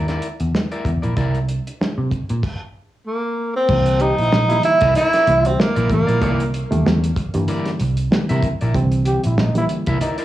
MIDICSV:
0, 0, Header, 1, 8, 480
1, 0, Start_track
1, 0, Tempo, 630915
1, 892, Time_signature, 4, 2, 24, 8
1, 7797, End_track
2, 0, Start_track
2, 0, Title_t, "Clean electric guitar"
2, 0, Program_c, 0, 27
2, 64, Note_on_c, 0, 74, 78
2, 67, Note_on_c, 0, 70, 75
2, 72, Note_on_c, 0, 64, 64
2, 200, Note_off_c, 0, 74, 0
2, 202, Note_off_c, 0, 70, 0
2, 205, Note_off_c, 0, 64, 0
2, 545, Note_on_c, 0, 74, 85
2, 547, Note_on_c, 0, 70, 68
2, 551, Note_on_c, 0, 64, 65
2, 682, Note_off_c, 0, 74, 0
2, 683, Note_off_c, 0, 70, 0
2, 685, Note_off_c, 0, 64, 0
2, 778, Note_on_c, 0, 74, 55
2, 782, Note_on_c, 0, 70, 53
2, 791, Note_on_c, 0, 64, 50
2, 878, Note_off_c, 0, 64, 0
2, 883, Note_off_c, 0, 70, 0
2, 884, Note_off_c, 0, 74, 0
2, 887, Note_on_c, 0, 64, 75
2, 892, Note_on_c, 0, 70, 80
2, 895, Note_on_c, 0, 74, 94
2, 1048, Note_off_c, 0, 64, 0
2, 1051, Note_off_c, 0, 70, 0
2, 1052, Note_off_c, 0, 74, 0
2, 3659, Note_on_c, 0, 76, 109
2, 3664, Note_on_c, 0, 70, 80
2, 3668, Note_on_c, 0, 64, 75
2, 3759, Note_off_c, 0, 64, 0
2, 3764, Note_off_c, 0, 70, 0
2, 3768, Note_on_c, 0, 64, 66
2, 3773, Note_off_c, 0, 76, 0
2, 3773, Note_on_c, 0, 70, 68
2, 3776, Note_on_c, 0, 74, 68
2, 3896, Note_off_c, 0, 74, 0
2, 3900, Note_off_c, 0, 64, 0
2, 3900, Note_off_c, 0, 70, 0
2, 3905, Note_on_c, 0, 74, 95
2, 3909, Note_on_c, 0, 64, 76
2, 3909, Note_on_c, 0, 70, 84
2, 4043, Note_off_c, 0, 74, 0
2, 4045, Note_off_c, 0, 64, 0
2, 4045, Note_off_c, 0, 70, 0
2, 4378, Note_on_c, 0, 74, 80
2, 4383, Note_on_c, 0, 70, 81
2, 4387, Note_on_c, 0, 64, 72
2, 4520, Note_off_c, 0, 74, 0
2, 4522, Note_off_c, 0, 70, 0
2, 4524, Note_off_c, 0, 64, 0
2, 4618, Note_on_c, 0, 74, 66
2, 4625, Note_on_c, 0, 70, 61
2, 4631, Note_on_c, 0, 64, 54
2, 4718, Note_off_c, 0, 64, 0
2, 4724, Note_off_c, 0, 70, 0
2, 4725, Note_off_c, 0, 74, 0
2, 4727, Note_on_c, 0, 64, 98
2, 4733, Note_on_c, 0, 70, 101
2, 4734, Note_on_c, 0, 74, 106
2, 4893, Note_off_c, 0, 64, 0
2, 4896, Note_off_c, 0, 70, 0
2, 4897, Note_off_c, 0, 74, 0
2, 5690, Note_on_c, 0, 64, 94
2, 5694, Note_on_c, 0, 70, 93
2, 5699, Note_on_c, 0, 74, 109
2, 5850, Note_off_c, 0, 64, 0
2, 5852, Note_off_c, 0, 70, 0
2, 5854, Note_off_c, 0, 74, 0
2, 6308, Note_on_c, 0, 76, 92
2, 6313, Note_on_c, 0, 70, 78
2, 6319, Note_on_c, 0, 64, 61
2, 6443, Note_off_c, 0, 76, 0
2, 6446, Note_off_c, 0, 70, 0
2, 6449, Note_off_c, 0, 64, 0
2, 6552, Note_on_c, 0, 74, 59
2, 6559, Note_on_c, 0, 70, 63
2, 6560, Note_on_c, 0, 64, 58
2, 6651, Note_off_c, 0, 74, 0
2, 6654, Note_off_c, 0, 64, 0
2, 6654, Note_off_c, 0, 70, 0
2, 7513, Note_on_c, 0, 76, 94
2, 7516, Note_on_c, 0, 70, 84
2, 7524, Note_on_c, 0, 64, 78
2, 7602, Note_off_c, 0, 64, 0
2, 7603, Note_off_c, 0, 70, 0
2, 7611, Note_on_c, 0, 64, 63
2, 7612, Note_on_c, 0, 70, 62
2, 7613, Note_off_c, 0, 76, 0
2, 7616, Note_on_c, 0, 74, 68
2, 7738, Note_off_c, 0, 74, 0
2, 7739, Note_off_c, 0, 64, 0
2, 7740, Note_off_c, 0, 70, 0
2, 7747, Note_on_c, 0, 74, 87
2, 7754, Note_on_c, 0, 70, 96
2, 7758, Note_on_c, 0, 64, 80
2, 7797, Note_off_c, 0, 64, 0
2, 7797, Note_off_c, 0, 70, 0
2, 7797, Note_off_c, 0, 74, 0
2, 7797, End_track
3, 0, Start_track
3, 0, Title_t, "Trombone"
3, 0, Program_c, 1, 57
3, 3043, Note_on_c, 1, 67, 106
3, 3155, Note_off_c, 1, 67, 0
3, 3176, Note_on_c, 1, 64, 83
3, 3286, Note_on_c, 1, 63, 89
3, 3298, Note_off_c, 1, 64, 0
3, 3397, Note_off_c, 1, 63, 0
3, 3415, Note_on_c, 1, 64, 111
3, 3483, Note_off_c, 1, 64, 0
3, 3658, Note_on_c, 1, 64, 111
3, 3747, Note_off_c, 1, 64, 0
3, 3769, Note_on_c, 1, 63, 93
3, 3851, Note_off_c, 1, 63, 0
3, 4016, Note_on_c, 1, 64, 113
3, 4208, Note_off_c, 1, 64, 0
3, 6891, Note_on_c, 1, 67, 100
3, 6999, Note_off_c, 1, 67, 0
3, 7033, Note_on_c, 1, 64, 88
3, 7153, Note_on_c, 1, 63, 85
3, 7164, Note_off_c, 1, 64, 0
3, 7252, Note_off_c, 1, 63, 0
3, 7285, Note_on_c, 1, 64, 116
3, 7343, Note_off_c, 1, 64, 0
3, 7513, Note_on_c, 1, 64, 118
3, 7594, Note_off_c, 1, 64, 0
3, 7617, Note_on_c, 1, 63, 87
3, 7695, Note_off_c, 1, 63, 0
3, 7797, End_track
4, 0, Start_track
4, 0, Title_t, "Tenor saxophone"
4, 0, Program_c, 2, 66
4, 2333, Note_on_c, 2, 58, 74
4, 2682, Note_off_c, 2, 58, 0
4, 2711, Note_on_c, 2, 60, 91
4, 3055, Note_on_c, 2, 63, 106
4, 3066, Note_off_c, 2, 60, 0
4, 3533, Note_off_c, 2, 63, 0
4, 3538, Note_on_c, 2, 64, 117
4, 3760, Note_off_c, 2, 64, 0
4, 3776, Note_on_c, 2, 64, 127
4, 4157, Note_on_c, 2, 60, 93
4, 4168, Note_off_c, 2, 64, 0
4, 4266, Note_on_c, 2, 58, 90
4, 4277, Note_off_c, 2, 60, 0
4, 4500, Note_off_c, 2, 58, 0
4, 4510, Note_on_c, 2, 58, 79
4, 4951, Note_off_c, 2, 58, 0
4, 7797, End_track
5, 0, Start_track
5, 0, Title_t, "Reed electric piano"
5, 0, Program_c, 3, 4
5, 2805, Note_on_c, 3, 52, 71
5, 2806, Note_on_c, 3, 50, 73
5, 2807, Note_on_c, 3, 55, 74
5, 2808, Note_on_c, 3, 58, 80
5, 3191, Note_off_c, 3, 50, 0
5, 3191, Note_off_c, 3, 52, 0
5, 3192, Note_off_c, 3, 55, 0
5, 3193, Note_off_c, 3, 58, 0
5, 3422, Note_on_c, 3, 55, 75
5, 3423, Note_on_c, 3, 50, 76
5, 3424, Note_on_c, 3, 51, 57
5, 3424, Note_on_c, 3, 58, 89
5, 3470, Note_off_c, 3, 51, 0
5, 3473, Note_on_c, 3, 52, 77
5, 3779, Note_off_c, 3, 55, 0
5, 3780, Note_off_c, 3, 50, 0
5, 3781, Note_off_c, 3, 58, 0
5, 3805, Note_off_c, 3, 52, 0
5, 4008, Note_on_c, 3, 50, 80
5, 4009, Note_on_c, 3, 52, 79
5, 4010, Note_on_c, 3, 55, 77
5, 4012, Note_on_c, 3, 58, 83
5, 4311, Note_off_c, 3, 50, 0
5, 4312, Note_off_c, 3, 52, 0
5, 4312, Note_off_c, 3, 55, 0
5, 4314, Note_off_c, 3, 58, 0
5, 4489, Note_on_c, 3, 50, 74
5, 4489, Note_on_c, 3, 52, 73
5, 4490, Note_on_c, 3, 55, 74
5, 4492, Note_on_c, 3, 58, 85
5, 4872, Note_off_c, 3, 50, 0
5, 4872, Note_off_c, 3, 52, 0
5, 4873, Note_off_c, 3, 55, 0
5, 4873, Note_off_c, 3, 58, 0
5, 5103, Note_on_c, 3, 52, 83
5, 5105, Note_on_c, 3, 50, 98
5, 5105, Note_on_c, 3, 55, 95
5, 5105, Note_on_c, 3, 57, 112
5, 5393, Note_off_c, 3, 50, 0
5, 5393, Note_off_c, 3, 52, 0
5, 5394, Note_off_c, 3, 55, 0
5, 5394, Note_off_c, 3, 57, 0
5, 5582, Note_on_c, 3, 50, 105
5, 5585, Note_on_c, 3, 58, 106
5, 5586, Note_on_c, 3, 52, 91
5, 5587, Note_on_c, 3, 55, 97
5, 5938, Note_off_c, 3, 50, 0
5, 5940, Note_off_c, 3, 52, 0
5, 5940, Note_off_c, 3, 55, 0
5, 5940, Note_off_c, 3, 58, 0
5, 6169, Note_on_c, 3, 50, 88
5, 6171, Note_on_c, 3, 55, 83
5, 6172, Note_on_c, 3, 52, 84
5, 6172, Note_on_c, 3, 58, 99
5, 6471, Note_off_c, 3, 50, 0
5, 6471, Note_off_c, 3, 55, 0
5, 6472, Note_off_c, 3, 52, 0
5, 6472, Note_off_c, 3, 58, 0
5, 6654, Note_on_c, 3, 50, 95
5, 6655, Note_on_c, 3, 52, 80
5, 6657, Note_on_c, 3, 55, 83
5, 6657, Note_on_c, 3, 60, 111
5, 7033, Note_off_c, 3, 50, 0
5, 7034, Note_off_c, 3, 52, 0
5, 7034, Note_off_c, 3, 55, 0
5, 7035, Note_off_c, 3, 60, 0
5, 7267, Note_on_c, 3, 50, 93
5, 7267, Note_on_c, 3, 52, 89
5, 7267, Note_on_c, 3, 55, 95
5, 7269, Note_on_c, 3, 58, 112
5, 7619, Note_off_c, 3, 50, 0
5, 7619, Note_off_c, 3, 52, 0
5, 7619, Note_off_c, 3, 55, 0
5, 7620, Note_off_c, 3, 58, 0
5, 7797, End_track
6, 0, Start_track
6, 0, Title_t, "Picked electric bass"
6, 0, Program_c, 4, 34
6, 0, Note_on_c, 4, 39, 81
6, 134, Note_off_c, 4, 39, 0
6, 308, Note_on_c, 4, 40, 79
6, 395, Note_off_c, 4, 40, 0
6, 650, Note_on_c, 4, 40, 75
6, 763, Note_off_c, 4, 40, 0
6, 792, Note_on_c, 4, 34, 79
6, 878, Note_off_c, 4, 34, 0
6, 889, Note_on_c, 4, 36, 97
6, 1203, Note_off_c, 4, 36, 0
6, 1504, Note_on_c, 4, 48, 91
6, 1594, Note_off_c, 4, 48, 0
6, 1750, Note_on_c, 4, 46, 79
6, 1837, Note_off_c, 4, 46, 0
6, 2810, Note_on_c, 4, 36, 116
6, 3124, Note_off_c, 4, 36, 0
6, 3184, Note_on_c, 4, 34, 82
6, 3274, Note_off_c, 4, 34, 0
6, 3294, Note_on_c, 4, 34, 94
6, 3494, Note_off_c, 4, 34, 0
6, 3665, Note_on_c, 4, 36, 89
6, 3755, Note_off_c, 4, 36, 0
6, 4014, Note_on_c, 4, 36, 102
6, 4214, Note_off_c, 4, 36, 0
6, 4389, Note_on_c, 4, 34, 102
6, 4477, Note_off_c, 4, 34, 0
6, 4484, Note_on_c, 4, 33, 82
6, 4600, Note_off_c, 4, 33, 0
6, 4629, Note_on_c, 4, 34, 77
6, 4734, Note_off_c, 4, 34, 0
6, 4734, Note_on_c, 4, 36, 116
6, 5045, Note_off_c, 4, 36, 0
6, 5113, Note_on_c, 4, 39, 95
6, 5199, Note_off_c, 4, 39, 0
6, 5217, Note_on_c, 4, 40, 95
6, 5415, Note_off_c, 4, 40, 0
6, 5590, Note_on_c, 4, 43, 89
6, 5677, Note_off_c, 4, 43, 0
6, 5939, Note_on_c, 4, 36, 103
6, 6136, Note_off_c, 4, 36, 0
6, 6319, Note_on_c, 4, 48, 111
6, 6401, Note_off_c, 4, 48, 0
6, 6559, Note_on_c, 4, 34, 89
6, 6641, Note_off_c, 4, 34, 0
6, 6652, Note_on_c, 4, 36, 119
6, 6963, Note_off_c, 4, 36, 0
6, 7041, Note_on_c, 4, 34, 94
6, 7122, Note_off_c, 4, 34, 0
6, 7141, Note_on_c, 4, 34, 100
6, 7336, Note_off_c, 4, 34, 0
6, 7509, Note_on_c, 4, 36, 94
6, 7595, Note_off_c, 4, 36, 0
6, 7797, End_track
7, 0, Start_track
7, 0, Title_t, "Muted picked electric bass strokes"
7, 1377, Note_on_c, 9, 29, 44
7, 1453, Note_off_c, 9, 29, 0
7, 7797, End_track
8, 0, Start_track
8, 0, Title_t, "Drums"
8, 62, Note_on_c, 9, 42, 34
8, 68, Note_on_c, 9, 38, 27
8, 138, Note_off_c, 9, 42, 0
8, 144, Note_off_c, 9, 38, 0
8, 167, Note_on_c, 9, 42, 67
8, 243, Note_off_c, 9, 42, 0
8, 302, Note_on_c, 9, 42, 54
8, 378, Note_off_c, 9, 42, 0
8, 416, Note_on_c, 9, 38, 102
8, 492, Note_off_c, 9, 38, 0
8, 544, Note_on_c, 9, 42, 33
8, 621, Note_off_c, 9, 42, 0
8, 647, Note_on_c, 9, 36, 84
8, 654, Note_on_c, 9, 42, 64
8, 723, Note_off_c, 9, 36, 0
8, 730, Note_off_c, 9, 42, 0
8, 787, Note_on_c, 9, 42, 41
8, 863, Note_off_c, 9, 42, 0
8, 889, Note_on_c, 9, 42, 75
8, 890, Note_on_c, 9, 36, 103
8, 965, Note_off_c, 9, 42, 0
8, 966, Note_off_c, 9, 36, 0
8, 1025, Note_on_c, 9, 42, 34
8, 1101, Note_off_c, 9, 42, 0
8, 1131, Note_on_c, 9, 42, 67
8, 1207, Note_off_c, 9, 42, 0
8, 1272, Note_on_c, 9, 42, 54
8, 1348, Note_off_c, 9, 42, 0
8, 1381, Note_on_c, 9, 38, 119
8, 1457, Note_off_c, 9, 38, 0
8, 1608, Note_on_c, 9, 36, 84
8, 1611, Note_on_c, 9, 42, 72
8, 1684, Note_off_c, 9, 36, 0
8, 1687, Note_off_c, 9, 42, 0
8, 1744, Note_on_c, 9, 42, 60
8, 1821, Note_off_c, 9, 42, 0
8, 1849, Note_on_c, 9, 36, 98
8, 1853, Note_on_c, 9, 49, 75
8, 1925, Note_off_c, 9, 36, 0
8, 1929, Note_off_c, 9, 49, 0
8, 2805, Note_on_c, 9, 49, 92
8, 2806, Note_on_c, 9, 36, 116
8, 2881, Note_off_c, 9, 49, 0
8, 2882, Note_off_c, 9, 36, 0
8, 2936, Note_on_c, 9, 42, 55
8, 3013, Note_off_c, 9, 42, 0
8, 3041, Note_on_c, 9, 42, 79
8, 3117, Note_off_c, 9, 42, 0
8, 3183, Note_on_c, 9, 42, 64
8, 3259, Note_off_c, 9, 42, 0
8, 3291, Note_on_c, 9, 38, 127
8, 3367, Note_off_c, 9, 38, 0
8, 3422, Note_on_c, 9, 42, 52
8, 3498, Note_off_c, 9, 42, 0
8, 3525, Note_on_c, 9, 42, 80
8, 3601, Note_off_c, 9, 42, 0
8, 3657, Note_on_c, 9, 42, 59
8, 3665, Note_on_c, 9, 36, 107
8, 3733, Note_off_c, 9, 42, 0
8, 3741, Note_off_c, 9, 36, 0
8, 3768, Note_on_c, 9, 42, 91
8, 3844, Note_off_c, 9, 42, 0
8, 3905, Note_on_c, 9, 42, 50
8, 3910, Note_on_c, 9, 38, 34
8, 3981, Note_off_c, 9, 42, 0
8, 3986, Note_off_c, 9, 38, 0
8, 4011, Note_on_c, 9, 42, 72
8, 4087, Note_off_c, 9, 42, 0
8, 4146, Note_on_c, 9, 42, 60
8, 4222, Note_off_c, 9, 42, 0
8, 4259, Note_on_c, 9, 38, 113
8, 4335, Note_off_c, 9, 38, 0
8, 4386, Note_on_c, 9, 42, 52
8, 4462, Note_off_c, 9, 42, 0
8, 4486, Note_on_c, 9, 36, 88
8, 4493, Note_on_c, 9, 42, 78
8, 4562, Note_off_c, 9, 36, 0
8, 4569, Note_off_c, 9, 42, 0
8, 4631, Note_on_c, 9, 42, 45
8, 4707, Note_off_c, 9, 42, 0
8, 4731, Note_on_c, 9, 36, 117
8, 4732, Note_on_c, 9, 42, 96
8, 4807, Note_off_c, 9, 36, 0
8, 4808, Note_off_c, 9, 42, 0
8, 4870, Note_on_c, 9, 42, 53
8, 4946, Note_off_c, 9, 42, 0
8, 4976, Note_on_c, 9, 42, 71
8, 5052, Note_off_c, 9, 42, 0
8, 5113, Note_on_c, 9, 42, 55
8, 5189, Note_off_c, 9, 42, 0
8, 5223, Note_on_c, 9, 38, 127
8, 5299, Note_off_c, 9, 38, 0
8, 5354, Note_on_c, 9, 42, 62
8, 5430, Note_off_c, 9, 42, 0
8, 5450, Note_on_c, 9, 36, 99
8, 5454, Note_on_c, 9, 42, 82
8, 5526, Note_off_c, 9, 36, 0
8, 5530, Note_off_c, 9, 42, 0
8, 5582, Note_on_c, 9, 42, 58
8, 5658, Note_off_c, 9, 42, 0
8, 5689, Note_on_c, 9, 42, 95
8, 5765, Note_off_c, 9, 42, 0
8, 5823, Note_on_c, 9, 42, 48
8, 5829, Note_on_c, 9, 38, 36
8, 5899, Note_off_c, 9, 42, 0
8, 5905, Note_off_c, 9, 38, 0
8, 5930, Note_on_c, 9, 42, 74
8, 6006, Note_off_c, 9, 42, 0
8, 6062, Note_on_c, 9, 42, 61
8, 6138, Note_off_c, 9, 42, 0
8, 6177, Note_on_c, 9, 38, 125
8, 6253, Note_off_c, 9, 38, 0
8, 6308, Note_on_c, 9, 42, 53
8, 6384, Note_off_c, 9, 42, 0
8, 6410, Note_on_c, 9, 36, 98
8, 6416, Note_on_c, 9, 42, 66
8, 6486, Note_off_c, 9, 36, 0
8, 6492, Note_off_c, 9, 42, 0
8, 6549, Note_on_c, 9, 42, 42
8, 6625, Note_off_c, 9, 42, 0
8, 6653, Note_on_c, 9, 36, 115
8, 6653, Note_on_c, 9, 42, 90
8, 6729, Note_off_c, 9, 36, 0
8, 6729, Note_off_c, 9, 42, 0
8, 6783, Note_on_c, 9, 42, 54
8, 6859, Note_off_c, 9, 42, 0
8, 6888, Note_on_c, 9, 42, 81
8, 6964, Note_off_c, 9, 42, 0
8, 7025, Note_on_c, 9, 42, 64
8, 7101, Note_off_c, 9, 42, 0
8, 7135, Note_on_c, 9, 38, 127
8, 7211, Note_off_c, 9, 38, 0
8, 7266, Note_on_c, 9, 42, 53
8, 7342, Note_off_c, 9, 42, 0
8, 7372, Note_on_c, 9, 42, 72
8, 7448, Note_off_c, 9, 42, 0
8, 7505, Note_on_c, 9, 42, 67
8, 7511, Note_on_c, 9, 36, 112
8, 7581, Note_off_c, 9, 42, 0
8, 7587, Note_off_c, 9, 36, 0
8, 7616, Note_on_c, 9, 42, 96
8, 7692, Note_off_c, 9, 42, 0
8, 7744, Note_on_c, 9, 42, 50
8, 7797, Note_off_c, 9, 42, 0
8, 7797, End_track
0, 0, End_of_file